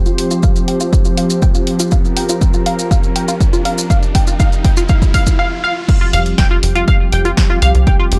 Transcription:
0.00 5.35 F3 medium
0.00 5.35 C4 medium
0.00 5.35 G4 medium
0.00 1.88 C5 medium
0.00 riser medium
0.06 0.12 F4 loud
0.06 maracas soft
0.18 open hi-hat loud
0.31 0.40 F4 loud
0.31 closed hi-hat soft
0.31 maracas medium
0.43 0.52 F5 loud
0.43 kick loud
0.43 closed hi-hat soft
0.43 maracas medium
0.56 closed hi-hat soft
0.56 maracas soft
0.68 0.77 G5 medium
0.68 open hi-hat loud
0.80 0.86 F4 loud
0.80 closed hi-hat soft
0.80 maracas medium
0.93 kick loud
0.93 closed hi-hat soft
0.93 maracas medium
1.05 1.14 F4 loud
1.05 closed hi-hat soft
1.05 maracas soft
1.17 1.27 F5 loud
1.17 open hi-hat loud
1.30 closed hi-hat soft
1.30 maracas medium
1.42 1.51 G5 medium
1.42 kick loud
1.42 closed hi-hat soft
1.42 maracas medium
1.54 1.61 F4 loud
1.54 closed hi-hat soft
1.54 maracas soft
1.67 open hi-hat loud
1.79 1.88 F4 loud
1.79 closed hi-hat soft
1.79 maracas medium
1.91 5.35 A#4 medium
1.91 2.01 F5 medium
1.91 kick loud
1.91 closed hi-hat soft
1.91 maracas medium
2.05 maracas soft
2.17 2.26 G5 medium
2.17 open hi-hat loud
2.29 2.35 F4 medium
2.29 closed hi-hat soft
2.29 maracas medium
2.41 kick loud
2.41 closed hi-hat soft
2.41 maracas medium
2.54 2.63 F4 medium
2.54 closed hi-hat soft
2.54 maracas soft
2.66 2.75 F5 loud
2.66 open hi-hat loud
2.79 closed hi-hat soft
2.79 maracas medium
2.91 3.00 F5 medium
2.91 kick loud
2.91 closed hi-hat soft
2.91 maracas medium
3.03 closed hi-hat soft
3.03 maracas soft
3.16 3.25 G5 medium
3.16 open hi-hat loud
3.28 3.34 F4 loud
3.28 closed hi-hat soft
3.28 maracas medium
3.41 kick loud
3.41 closed hi-hat soft
3.41 maracas medium
3.53 3.62 F4 medium
3.53 closed hi-hat soft
3.53 maracas soft
3.65 3.74 F5 medium
3.65 open hi-hat loud
3.78 closed hi-hat soft
3.78 maracas medium
3.90 3.99 F5 loud
3.90 kick loud
3.90 closed hi-hat soft
3.90 maracas medium
4.03 closed hi-hat soft
4.03 maracas soft
4.15 4.24 G5 medium
4.15 kick loud
4.15 open hi-hat loud
4.27 4.33 F4 loud
4.27 closed hi-hat soft
4.27 maracas medium
4.40 4.49 F5 loud
4.40 kick loud
4.40 closed hi-hat soft
4.40 maracas medium
4.52 closed hi-hat soft
4.52 maracas soft
4.64 4.74 G5 medium
4.64 kick loud
4.64 open hi-hat loud
4.77 4.83 F4 loud
4.77 closed hi-hat soft
4.77 maracas medium
4.89 4.98 F5 loud
4.89 kick loud
4.89 closed hi-hat soft
4.89 maracas medium
5.02 kick medium
5.02 closed hi-hat soft
5.02 maracas soft
5.14 5.23 F5 loud
5.14 kick loud
5.14 open hi-hat loud
5.26 kick loud
5.26 closed hi-hat soft
5.26 maracas medium
5.39 5.48 F5 loud
5.64 5.73 F5 loud
5.88 8.19 F3 medium
5.88 8.19 G3 medium
5.88 8.19 C4 medium
5.88 8.19 G4 medium
5.88 kick loud
5.88 closed hi-hat medium
5.88 crash loud
6.01 6.10 F4 loud
6.13 6.34 F1 loud
6.13 6.22 F5 loud
6.13 open hi-hat loud
6.26 closed hi-hat medium
6.38 6.59 F1 medium
6.38 6.47 G5 medium
6.38 kick loud
6.38 snare loud
6.38 closed hi-hat medium
6.51 6.57 F4 loud
6.63 6.84 F1 medium
6.63 open hi-hat loud
6.75 6.84 F4 loud
6.75 closed hi-hat medium
6.88 6.97 F5 loud
6.88 kick loud
6.88 closed hi-hat medium
7.12 7.33 F1 loud
7.12 7.22 G5 medium
7.12 open hi-hat loud
7.25 7.31 F4 loud
7.25 closed hi-hat medium
7.37 kick loud
7.37 snare loud
7.37 closed hi-hat medium
7.50 7.59 F4 loud
7.62 7.73 C2 loud
7.62 7.71 F5 loud
7.62 open hi-hat loud
7.75 7.95 C2 medium
7.75 closed hi-hat medium
7.87 7.96 G5 medium
7.87 kick loud
7.87 closed hi-hat medium
7.99 8.05 F4 loud
8.12 8.19 F1 loud
8.12 open hi-hat loud

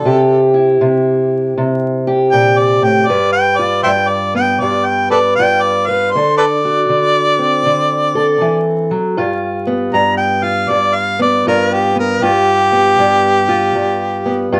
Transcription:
0.00 0.50 A4 loud
0.05 0.80 C3 medium
0.05 2.06 G4 medium
0.54 3.06 E4 medium
0.81 1.56 C3 medium
1.57 3.09 C3 medium
2.07 3.09 G4 medium
2.31 2.81 A#2 medium
2.31 2.60 G5 loud
2.58 2.85 D5 medium
2.82 3.09 A2 medium
2.82 3.09 G5 medium
3.07 3.85 G2 medium
3.07 5.10 B4 medium
3.07 3.32 D5 loud
3.33 3.59 G5 loud
3.57 5.38 F4 medium
3.57 3.83 D5 medium
3.83 4.61 G2 medium
3.83 3.90 C5 medium
3.83 3.91 E5 medium
3.83 4.10 G5 medium
4.08 4.34 D5 medium
4.35 6.10 B3 medium
4.35 4.62 G5 medium
4.60 5.37 G2 medium
4.60 4.87 D5 medium
4.86 5.10 G5 medium
5.11 5.19 A4 medium
5.11 5.18 B4 medium
5.11 5.87 B4 medium
5.11 5.35 D5 medium
5.35 6.14 G2 medium
5.35 5.63 G5 loud
5.40 6.11 F4 medium
5.61 5.88 D5 medium
5.86 6.11 B4 medium
5.86 6.12 F5 medium
6.11 6.36 C5 medium
6.15 6.88 D3 medium
6.15 8.14 A4 medium
6.38 6.45 A4 medium
6.38 6.45 B4 medium
6.38 8.63 D5 loud
6.65 9.16 F#4 medium
6.89 7.65 D3 medium
7.39 9.15 C4 medium
7.66 8.41 D3 medium
8.15 9.15 A4 medium
8.41 8.90 E3 medium
8.91 9.18 F#3 medium
9.17 9.94 G2 medium
9.17 10.43 F4 medium
9.67 11.19 B3 medium
9.94 10.70 G2 medium
9.94 10.17 A#5 medium
10.17 10.45 G5 medium
10.43 11.47 F4 medium
10.43 10.71 F5 medium
10.69 11.46 G2 medium
10.69 10.96 D5 medium
10.95 11.20 F5 medium
11.19 11.95 B3 medium
11.19 11.46 D5 medium
11.47 12.22 G2 medium
11.47 12.23 F4 medium
11.47 11.75 A#4 medium
11.73 11.97 G4 medium
11.95 12.26 B3 medium
11.99 12.25 A#4 medium
12.22 12.98 G2 medium
12.22 13.48 F4 medium
12.22 14.48 G4 loud
12.72 14.25 B3 medium
12.99 13.75 G2 medium
13.49 14.53 F4 medium
13.76 14.52 G2 medium
14.26 14.60 B3 medium
14.52 14.60 G2 medium
14.52 14.60 F4 medium

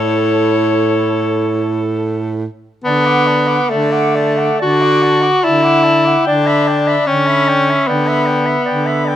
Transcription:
0.00 2.45 A2 soft
0.00 2.46 E4 medium
0.00 2.35 A4 medium
0.00 1.91 C#5 medium
2.84 3.59 D3 medium
2.84 3.71 B3 medium
2.84 3.08 D5 soft
2.84 3.07 A5 soft
3.06 3.28 F#5 soft
3.06 3.29 D6 soft
3.27 3.49 D5 soft
3.27 3.49 A5 soft
3.47 3.69 F#5 soft
3.47 3.70 D6 soft
3.69 4.50 D3 medium
3.69 4.60 A3 medium
3.69 3.93 D5 soft
3.69 3.93 A5 soft
3.91 4.17 F#5 soft
3.91 4.18 D6 soft
4.15 4.38 D5 soft
4.15 4.41 A5 soft
4.37 4.58 F#5 soft
4.37 4.59 D6 soft
4.59 5.34 D3 medium
4.59 5.46 F#4 medium
4.59 4.84 D5 medium
4.59 4.83 A5 soft
4.82 5.04 F#5 soft
4.82 5.04 D6 soft
5.02 5.23 D5 soft
5.02 5.24 A5 soft
5.22 5.42 F#5 soft
5.22 5.41 D6 soft
5.42 6.16 D3 medium
5.42 6.26 E4 medium
5.42 5.65 D5 soft
5.42 5.65 A5 soft
5.63 5.86 F#5 soft
5.63 5.85 D6 soft
5.83 6.08 D5 soft
5.83 6.06 A5 soft
6.05 6.26 F#5 soft
6.05 6.25 D6 soft
6.25 6.97 D3 medium
6.25 7.08 D4 medium
6.25 6.48 D5 soft
6.25 6.48 G5 medium
6.46 6.69 E5 soft
6.46 6.69 B5 soft
6.68 6.89 D5 soft
6.68 6.89 G5 soft
6.87 7.07 E5 soft
6.87 7.07 B5 soft
7.07 7.79 D3 soft
7.07 7.89 C#4 medium
7.07 7.29 D5 soft
7.07 7.28 G5 soft
7.27 7.50 E5 soft
7.27 7.50 B5 soft
7.48 7.70 D5 soft
7.48 7.72 G5 soft
7.69 7.88 E5 soft
7.69 7.89 B5 soft
7.88 8.57 D3 medium
7.88 9.16 B3 medium
7.88 8.09 D5 soft
7.88 8.09 G5 soft
8.07 8.28 E5 soft
8.07 8.28 B5 soft
8.26 8.47 D5 soft
8.26 8.48 G5 soft
8.46 8.65 E5 soft
8.46 8.66 B5 soft
8.65 9.16 D3 soft
8.65 8.87 D5 soft
8.65 8.88 G5 soft
8.86 9.07 E5 soft
8.86 9.10 B5 soft
9.05 9.16 D5 soft
9.05 9.16 G5 soft

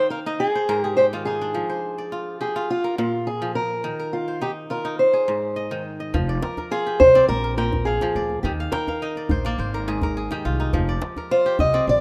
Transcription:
0.00 0.45 D#3 medium
0.00 0.26 D#4 medium
0.00 0.55 C5 medium
0.00 0.26 D#5 medium
0.00 0.11 F5 medium
0.00 0.75 G5 medium
0.10 0.18 A#4 medium
0.10 1.11 F5 medium
0.26 0.46 D#4 medium
0.26 1.34 D#5 medium
0.40 0.83 G#4 medium
0.40 1.19 D5 medium
0.55 1.69 C5 medium
0.69 1.60 G#2 medium
0.69 1.96 A#4 medium
0.83 0.99 G4 medium
0.83 2.20 G#4 medium
0.97 2.39 G4 medium
0.97 1.05 C5 medium
1.13 1.60 D#3 medium
1.13 2.12 F4 medium
1.25 2.04 D#4 medium
1.25 2.40 G#4 medium
1.41 3.09 D4 medium
1.54 2.75 F3 medium
1.70 2.88 C5 medium
1.98 3.09 D5 medium
2.12 2.55 F4 medium
2.41 3.82 G4 medium
2.41 2.68 G#4 medium
2.56 4.07 F4 medium
2.70 2.97 F4 medium
2.84 3.99 A#4 medium
2.98 3.90 A#2 medium
2.98 3.28 F4 medium
3.27 3.55 G#4 medium
3.42 3.90 F3 medium
3.55 4.15 A#4 medium
3.84 5.05 D#3 medium
3.99 5.27 A#4 medium
4.13 4.40 F4 medium
4.28 5.47 C5 soft
4.41 4.84 D#4 medium
4.41 4.50 G4 medium
4.70 6.21 F4 medium
4.70 4.99 A#4 medium
4.85 6.35 D#4 medium
4.99 5.82 C5 medium
5.13 6.50 G#4 medium
5.28 6.19 G#2 medium
5.56 6.00 D#5 medium
5.71 6.19 D#3 medium
6.00 6.35 D#5 medium
6.14 6.37 F1 loud
6.14 7.34 F3 medium
6.14 djembe slap soft
6.14 djembe bass medium
6.29 7.15 D5 medium
6.42 6.69 A#4 medium
6.42 djembe slap medium
6.57 7.44 A#4 medium
6.57 djembe tone soft
6.71 8.23 F4 medium
6.71 7.01 G#4 medium
6.86 8.28 G4 medium
6.86 djembe slap soft
7.00 7.23 C2 medium
7.00 7.27 C5 loud
7.00 djembe bass medium
7.15 8.95 C4 medium
7.15 8.15 D5 medium
7.15 djembe slap soft
7.28 7.98 A#1 loud
7.28 7.56 A#4 loud
7.28 djembe slap soft
7.44 8.71 A#4 medium
7.58 8.49 A#2 medium
7.58 7.87 A#4 medium
7.58 8.51 G5 medium
7.72 djembe tone soft
7.72 djembe bass medium
7.85 8.42 G#4 medium
7.85 8.60 F5 medium
8.01 8.49 F3 medium
8.01 djembe slap soft
8.15 8.38 D2 medium
8.15 9.08 D5 medium
8.15 djembe slap soft
8.30 djembe slap soft
8.43 8.67 D#2 loud
8.43 9.64 D#3 medium
8.43 8.51 G4 medium
8.43 djembe slap soft
8.43 djembe bass medium
8.60 8.88 F5 medium
8.72 9.83 A#4 medium
8.72 9.66 G5 medium
8.72 djembe slap medium
8.88 9.88 F5 medium
8.88 djembe tone medium
9.02 9.52 D#4 medium
9.02 9.52 D#5 medium
9.16 9.45 D5 medium
9.16 djembe slap soft
9.29 9.53 A#1 medium
9.29 9.59 C5 medium
9.29 djembe bass medium
9.45 11.39 A#3 medium
9.45 10.38 D5 medium
9.45 djembe slap soft
9.58 10.27 G#1 loud
9.58 10.78 C5 medium
9.58 djembe slap soft
9.74 10.03 A#4 medium
9.88 10.78 G#2 medium
9.88 10.16 G#4 medium
10.02 11.17 A#4 medium
10.02 djembe tone medium
10.02 djembe bass medium
10.17 11.52 G#4 medium
10.31 10.78 D#3 medium
10.31 11.45 G4 medium
10.31 djembe slap medium
10.45 10.68 C2 medium
10.45 11.31 F4 medium
10.45 djembe slap soft
10.59 10.95 D#4 medium
10.59 djembe slap soft
10.73 10.96 F1 loud
10.73 11.93 F3 medium
10.73 djembe slap soft
10.73 djembe bass medium
10.89 11.74 D5 medium
11.02 djembe slap medium
11.17 12.01 A#4 medium
11.17 djembe tone soft
11.31 12.01 F4 medium
11.31 11.60 C5 medium
11.45 12.01 G4 medium
11.45 djembe slap soft
11.59 11.82 C2 medium
11.59 11.89 D#5 loud
11.59 djembe bass medium
11.74 12.01 C4 medium
11.74 12.01 D5 medium
11.74 djembe slap soft
11.87 12.01 A#1 loud
11.87 12.01 D5 loud
11.87 djembe slap soft

